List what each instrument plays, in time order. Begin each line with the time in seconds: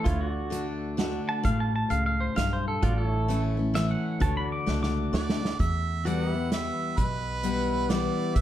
0.04 upright bass D2, steel-string acoustic guitar D3, pedal steel guitar E4 F4 A4 C#5, kick, closed hi-hat
0.21 pedal steel guitar F#4
0.28 pedal steel guitar F#4 D5
0.50 steel-string acoustic guitar D3 A3 D4 F#4, closed hi-hat
0.97 steel-string acoustic guitar D3 A3 D4 F#4, snare, closed hi-hat
1.29 pedal steel guitar A5
1.43 upright bass A1, steel-string acoustic guitar A2, pedal steel guitar F5, kick, closed hi-hat
1.60 pedal steel guitar A5
1.76 pedal steel guitar A5
1.90 upright bass C#2, steel-string acoustic guitar C#3, pedal steel guitar F5, closed hi-hat
2.06 pedal steel guitar F5
2.21 pedal steel guitar C5
2.36 upright bass B1, steel-string acoustic guitar G2, pedal steel guitar F5, snare, closed hi-hat
2.53 pedal steel guitar C5
2.68 pedal steel guitar A4
2.82 upright bass A1, steel-string acoustic guitar A2, pedal steel guitar F4 F#4 A4 D5, kick, closed hi-hat
2.98 pedal steel guitar A4
3.05 pedal steel guitar E4 C#5
3.28 steel-string acoustic guitar E3 A3 C#4 E4, closed hi-hat
3.57 steel-string acoustic guitar C#4 E4
3.74 steel-string acoustic guitar E3 A3 C#4 E4, pedal steel guitar E5, snare, closed hi-hat
3.91 pedal steel guitar F#5
4.20 upright bass D2, steel-string acoustic guitar D3, pedal steel guitar F#4 A4 A5, kick, closed hi-hat
4.24 pedal steel guitar C#5
4.37 pedal steel guitar B5
4.44 pedal steel guitar D5
4.52 pedal steel guitar D6
4.66 upright bass C#2, steel-string acoustic guitar A3 D4 F#4, snare
4.83 pedal steel guitar D6, snare
5.13 upright bass D2, steel-string acoustic guitar D3 A3 D4 F#4, harmonica D5, snare
5.30 snare
5.40 steel-string acoustic guitar D4 F#4
5.45 snare
5.59 steel-string acoustic guitar E2, upright bass E2, harmonica E5, kick, closed hi-hat
6.05 steel-string acoustic guitar E3 G3 B3 E4, pedal steel guitar F#4 A4 D5, harmonica F#5, closed hi-hat
6.25 pedal steel guitar G4
6.32 steel-string acoustic guitar B3 E4, pedal steel guitar B4 E5
6.52 steel-string acoustic guitar E3 G3 B3 E4, harmonica E5, snare, closed hi-hat
6.97 upright bass B1, steel-string acoustic guitar B2, harmonica B4, kick, closed hi-hat
7.43 steel-string acoustic guitar E3 G3 B3 E4, closed hi-hat
7.89 steel-string acoustic guitar E3 G3 B3 E4, harmonica D5, snare, closed hi-hat
8.35 upright bass B1, steel-string acoustic guitar B2, harmonica E5, kick, closed hi-hat